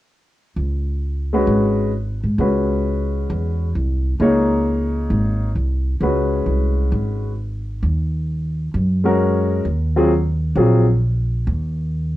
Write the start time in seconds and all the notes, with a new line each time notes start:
0.56 C#2
1.33 G#3 C#4 F#4 B4
1.47 G#1
2.24 G#2
2.38 C#2 G#3 C#4 F#4 B4
3.30 E2
3.75 C2
4.20 C#2 A#3 D#4 G#4 C#5
5.10 G#1
5.56 C2
6.01 C#2 G#3 C#4 F#4 B4
6.46 C2
6.92 G#1
7.82 D#2
8.74 F#2
9.04 G#3 C#4 F#4 A#4
9.65 D#2
9.96 F#3 C4 F4 G#4
10.55 A#1 F#3 C4 F4 G#4
11.47 D#2